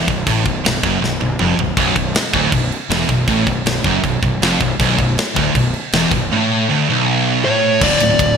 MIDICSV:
0, 0, Header, 1, 5, 480
1, 0, Start_track
1, 0, Key_signature, 2, "minor"
1, 0, Tempo, 377358
1, 347, Time_signature, 4, 2, 24, 8
1, 10648, End_track
2, 0, Start_track
2, 0, Title_t, "Lead electric guitar"
2, 0, Program_c, 0, 29
2, 9472, Note_on_c, 0, 73, 91
2, 9916, Note_off_c, 0, 73, 0
2, 9961, Note_on_c, 0, 74, 104
2, 10648, Note_off_c, 0, 74, 0
2, 10648, End_track
3, 0, Start_track
3, 0, Title_t, "Distorted electric guitar"
3, 0, Program_c, 1, 30
3, 124, Note_on_c, 1, 35, 69
3, 308, Note_off_c, 1, 35, 0
3, 370, Note_on_c, 1, 45, 111
3, 590, Note_off_c, 1, 45, 0
3, 595, Note_on_c, 1, 35, 79
3, 783, Note_off_c, 1, 35, 0
3, 851, Note_on_c, 1, 35, 81
3, 1031, Note_off_c, 1, 35, 0
3, 1089, Note_on_c, 1, 42, 111
3, 1311, Note_off_c, 1, 42, 0
3, 1332, Note_on_c, 1, 35, 73
3, 1512, Note_off_c, 1, 35, 0
3, 1554, Note_on_c, 1, 35, 71
3, 1743, Note_off_c, 1, 35, 0
3, 1795, Note_on_c, 1, 41, 101
3, 2021, Note_off_c, 1, 41, 0
3, 2026, Note_on_c, 1, 35, 69
3, 2219, Note_off_c, 1, 35, 0
3, 2250, Note_on_c, 1, 35, 106
3, 2492, Note_off_c, 1, 35, 0
3, 2516, Note_on_c, 1, 35, 76
3, 2704, Note_off_c, 1, 35, 0
3, 2975, Note_on_c, 1, 38, 107
3, 3208, Note_off_c, 1, 38, 0
3, 3214, Note_on_c, 1, 35, 72
3, 3413, Note_off_c, 1, 35, 0
3, 3682, Note_on_c, 1, 40, 91
3, 3924, Note_off_c, 1, 40, 0
3, 3929, Note_on_c, 1, 35, 74
3, 4131, Note_off_c, 1, 35, 0
3, 4176, Note_on_c, 1, 45, 105
3, 4404, Note_off_c, 1, 45, 0
3, 4410, Note_on_c, 1, 35, 73
3, 4611, Note_off_c, 1, 35, 0
3, 4645, Note_on_c, 1, 35, 82
3, 4849, Note_off_c, 1, 35, 0
3, 4902, Note_on_c, 1, 42, 105
3, 5136, Note_off_c, 1, 42, 0
3, 5141, Note_on_c, 1, 35, 81
3, 5337, Note_off_c, 1, 35, 0
3, 5388, Note_on_c, 1, 35, 73
3, 5580, Note_off_c, 1, 35, 0
3, 5642, Note_on_c, 1, 41, 96
3, 5853, Note_off_c, 1, 41, 0
3, 5858, Note_on_c, 1, 35, 75
3, 6056, Note_off_c, 1, 35, 0
3, 6106, Note_on_c, 1, 35, 107
3, 6326, Note_off_c, 1, 35, 0
3, 6341, Note_on_c, 1, 35, 76
3, 6537, Note_off_c, 1, 35, 0
3, 6797, Note_on_c, 1, 38, 112
3, 7046, Note_off_c, 1, 38, 0
3, 7077, Note_on_c, 1, 35, 73
3, 7265, Note_off_c, 1, 35, 0
3, 7562, Note_on_c, 1, 40, 103
3, 7788, Note_off_c, 1, 40, 0
3, 7807, Note_on_c, 1, 35, 72
3, 7990, Note_off_c, 1, 35, 0
3, 8049, Note_on_c, 1, 45, 114
3, 8511, Note_off_c, 1, 45, 0
3, 8532, Note_on_c, 1, 38, 111
3, 8753, Note_off_c, 1, 38, 0
3, 8771, Note_on_c, 1, 35, 108
3, 9472, Note_off_c, 1, 35, 0
3, 9488, Note_on_c, 1, 45, 101
3, 9950, Note_off_c, 1, 45, 0
3, 9968, Note_on_c, 1, 45, 107
3, 9970, Note_on_c, 1, 38, 91
3, 9979, Note_on_c, 1, 50, 114
3, 10182, Note_off_c, 1, 45, 0
3, 10184, Note_off_c, 1, 38, 0
3, 10188, Note_off_c, 1, 50, 0
3, 10211, Note_on_c, 1, 45, 91
3, 10226, Note_on_c, 1, 38, 71
3, 10319, Note_off_c, 1, 45, 0
3, 10326, Note_off_c, 1, 38, 0
3, 10339, Note_on_c, 1, 45, 84
3, 10343, Note_on_c, 1, 38, 75
3, 10430, Note_off_c, 1, 38, 0
3, 10437, Note_off_c, 1, 45, 0
3, 10445, Note_on_c, 1, 38, 93
3, 10452, Note_on_c, 1, 45, 97
3, 10648, Note_off_c, 1, 38, 0
3, 10648, Note_off_c, 1, 45, 0
3, 10648, End_track
4, 0, Start_track
4, 0, Title_t, "Fingered electric bass"
4, 0, Program_c, 2, 33
4, 92, Note_on_c, 2, 23, 87
4, 322, Note_off_c, 2, 23, 0
4, 333, Note_on_c, 2, 33, 92
4, 563, Note_off_c, 2, 33, 0
4, 572, Note_on_c, 2, 23, 84
4, 802, Note_off_c, 2, 23, 0
4, 825, Note_on_c, 2, 23, 74
4, 1046, Note_off_c, 2, 23, 0
4, 1054, Note_on_c, 2, 30, 98
4, 1283, Note_off_c, 2, 30, 0
4, 1304, Note_on_c, 2, 23, 80
4, 1529, Note_off_c, 2, 23, 0
4, 1547, Note_on_c, 2, 23, 81
4, 1771, Note_off_c, 2, 23, 0
4, 1786, Note_on_c, 2, 29, 96
4, 2006, Note_off_c, 2, 29, 0
4, 2013, Note_on_c, 2, 23, 79
4, 2239, Note_off_c, 2, 23, 0
4, 2247, Note_on_c, 2, 23, 89
4, 2480, Note_off_c, 2, 23, 0
4, 2491, Note_on_c, 2, 23, 81
4, 2722, Note_off_c, 2, 23, 0
4, 2971, Note_on_c, 2, 26, 84
4, 3196, Note_off_c, 2, 26, 0
4, 3204, Note_on_c, 2, 23, 83
4, 3438, Note_off_c, 2, 23, 0
4, 3689, Note_on_c, 2, 28, 98
4, 3921, Note_off_c, 2, 28, 0
4, 3928, Note_on_c, 2, 23, 90
4, 4150, Note_off_c, 2, 23, 0
4, 4158, Note_on_c, 2, 33, 104
4, 4395, Note_off_c, 2, 33, 0
4, 4405, Note_on_c, 2, 23, 83
4, 4639, Note_off_c, 2, 23, 0
4, 4652, Note_on_c, 2, 23, 77
4, 4876, Note_off_c, 2, 23, 0
4, 4884, Note_on_c, 2, 30, 96
4, 5119, Note_off_c, 2, 30, 0
4, 5135, Note_on_c, 2, 23, 81
4, 5365, Note_off_c, 2, 23, 0
4, 5370, Note_on_c, 2, 23, 82
4, 5602, Note_off_c, 2, 23, 0
4, 5614, Note_on_c, 2, 29, 97
4, 5844, Note_off_c, 2, 29, 0
4, 5858, Note_on_c, 2, 23, 89
4, 6087, Note_off_c, 2, 23, 0
4, 6093, Note_on_c, 2, 23, 101
4, 6324, Note_off_c, 2, 23, 0
4, 6335, Note_on_c, 2, 23, 77
4, 6565, Note_off_c, 2, 23, 0
4, 6824, Note_on_c, 2, 26, 92
4, 7045, Note_off_c, 2, 26, 0
4, 7053, Note_on_c, 2, 23, 79
4, 7284, Note_off_c, 2, 23, 0
4, 7548, Note_on_c, 2, 28, 106
4, 7764, Note_off_c, 2, 28, 0
4, 7771, Note_on_c, 2, 23, 85
4, 8003, Note_off_c, 2, 23, 0
4, 9937, Note_on_c, 2, 26, 96
4, 10103, Note_off_c, 2, 26, 0
4, 10194, Note_on_c, 2, 26, 91
4, 10354, Note_off_c, 2, 26, 0
4, 10418, Note_on_c, 2, 26, 93
4, 10583, Note_off_c, 2, 26, 0
4, 10648, End_track
5, 0, Start_track
5, 0, Title_t, "Drums"
5, 102, Note_on_c, 9, 36, 106
5, 103, Note_on_c, 9, 49, 63
5, 229, Note_off_c, 9, 36, 0
5, 230, Note_off_c, 9, 49, 0
5, 341, Note_on_c, 9, 36, 122
5, 343, Note_on_c, 9, 49, 85
5, 468, Note_off_c, 9, 36, 0
5, 470, Note_off_c, 9, 49, 0
5, 580, Note_on_c, 9, 36, 92
5, 583, Note_on_c, 9, 49, 59
5, 707, Note_off_c, 9, 36, 0
5, 710, Note_off_c, 9, 49, 0
5, 827, Note_on_c, 9, 49, 84
5, 842, Note_on_c, 9, 38, 116
5, 954, Note_off_c, 9, 49, 0
5, 970, Note_off_c, 9, 38, 0
5, 1062, Note_on_c, 9, 36, 106
5, 1068, Note_on_c, 9, 49, 59
5, 1189, Note_off_c, 9, 36, 0
5, 1195, Note_off_c, 9, 49, 0
5, 1323, Note_on_c, 9, 38, 66
5, 1450, Note_off_c, 9, 38, 0
5, 1539, Note_on_c, 9, 48, 65
5, 1666, Note_off_c, 9, 48, 0
5, 1771, Note_on_c, 9, 45, 96
5, 1898, Note_off_c, 9, 45, 0
5, 2022, Note_on_c, 9, 43, 97
5, 2149, Note_off_c, 9, 43, 0
5, 2252, Note_on_c, 9, 36, 109
5, 2257, Note_on_c, 9, 49, 91
5, 2380, Note_off_c, 9, 36, 0
5, 2384, Note_off_c, 9, 49, 0
5, 2492, Note_on_c, 9, 36, 91
5, 2497, Note_on_c, 9, 49, 63
5, 2619, Note_off_c, 9, 36, 0
5, 2624, Note_off_c, 9, 49, 0
5, 2730, Note_on_c, 9, 49, 82
5, 2746, Note_on_c, 9, 38, 112
5, 2858, Note_off_c, 9, 49, 0
5, 2873, Note_off_c, 9, 38, 0
5, 2969, Note_on_c, 9, 36, 97
5, 2974, Note_on_c, 9, 49, 65
5, 3097, Note_off_c, 9, 36, 0
5, 3101, Note_off_c, 9, 49, 0
5, 3209, Note_on_c, 9, 36, 96
5, 3215, Note_on_c, 9, 49, 89
5, 3336, Note_off_c, 9, 36, 0
5, 3343, Note_off_c, 9, 49, 0
5, 3462, Note_on_c, 9, 49, 65
5, 3589, Note_off_c, 9, 49, 0
5, 3695, Note_on_c, 9, 49, 83
5, 3710, Note_on_c, 9, 38, 124
5, 3822, Note_off_c, 9, 49, 0
5, 3837, Note_off_c, 9, 38, 0
5, 3928, Note_on_c, 9, 49, 63
5, 3930, Note_on_c, 9, 36, 97
5, 4056, Note_off_c, 9, 49, 0
5, 4057, Note_off_c, 9, 36, 0
5, 4167, Note_on_c, 9, 49, 84
5, 4168, Note_on_c, 9, 36, 111
5, 4295, Note_off_c, 9, 36, 0
5, 4295, Note_off_c, 9, 49, 0
5, 4412, Note_on_c, 9, 36, 89
5, 4418, Note_on_c, 9, 49, 61
5, 4539, Note_off_c, 9, 36, 0
5, 4545, Note_off_c, 9, 49, 0
5, 4651, Note_on_c, 9, 49, 86
5, 4667, Note_on_c, 9, 38, 112
5, 4779, Note_off_c, 9, 49, 0
5, 4794, Note_off_c, 9, 38, 0
5, 4889, Note_on_c, 9, 36, 98
5, 4889, Note_on_c, 9, 49, 63
5, 5016, Note_off_c, 9, 36, 0
5, 5016, Note_off_c, 9, 49, 0
5, 5134, Note_on_c, 9, 36, 93
5, 5143, Note_on_c, 9, 49, 82
5, 5261, Note_off_c, 9, 36, 0
5, 5270, Note_off_c, 9, 49, 0
5, 5376, Note_on_c, 9, 36, 93
5, 5388, Note_on_c, 9, 49, 59
5, 5503, Note_off_c, 9, 36, 0
5, 5516, Note_off_c, 9, 49, 0
5, 5622, Note_on_c, 9, 49, 82
5, 5638, Note_on_c, 9, 38, 122
5, 5749, Note_off_c, 9, 49, 0
5, 5765, Note_off_c, 9, 38, 0
5, 5859, Note_on_c, 9, 36, 105
5, 5864, Note_on_c, 9, 49, 64
5, 5986, Note_off_c, 9, 36, 0
5, 5991, Note_off_c, 9, 49, 0
5, 6102, Note_on_c, 9, 36, 117
5, 6114, Note_on_c, 9, 49, 86
5, 6229, Note_off_c, 9, 36, 0
5, 6241, Note_off_c, 9, 49, 0
5, 6341, Note_on_c, 9, 36, 88
5, 6349, Note_on_c, 9, 49, 60
5, 6469, Note_off_c, 9, 36, 0
5, 6476, Note_off_c, 9, 49, 0
5, 6586, Note_on_c, 9, 49, 82
5, 6601, Note_on_c, 9, 38, 116
5, 6713, Note_off_c, 9, 49, 0
5, 6728, Note_off_c, 9, 38, 0
5, 6823, Note_on_c, 9, 36, 111
5, 6826, Note_on_c, 9, 49, 62
5, 6950, Note_off_c, 9, 36, 0
5, 6953, Note_off_c, 9, 49, 0
5, 7062, Note_on_c, 9, 36, 97
5, 7071, Note_on_c, 9, 49, 87
5, 7189, Note_off_c, 9, 36, 0
5, 7198, Note_off_c, 9, 49, 0
5, 7298, Note_on_c, 9, 49, 66
5, 7425, Note_off_c, 9, 49, 0
5, 7536, Note_on_c, 9, 49, 88
5, 7551, Note_on_c, 9, 38, 115
5, 7663, Note_off_c, 9, 49, 0
5, 7678, Note_off_c, 9, 38, 0
5, 7776, Note_on_c, 9, 49, 75
5, 7777, Note_on_c, 9, 36, 92
5, 7903, Note_off_c, 9, 49, 0
5, 7905, Note_off_c, 9, 36, 0
5, 9940, Note_on_c, 9, 36, 114
5, 9941, Note_on_c, 9, 57, 127
5, 10068, Note_off_c, 9, 36, 0
5, 10068, Note_off_c, 9, 57, 0
5, 10179, Note_on_c, 9, 51, 86
5, 10306, Note_off_c, 9, 51, 0
5, 10421, Note_on_c, 9, 36, 96
5, 10427, Note_on_c, 9, 51, 124
5, 10548, Note_off_c, 9, 36, 0
5, 10554, Note_off_c, 9, 51, 0
5, 10648, End_track
0, 0, End_of_file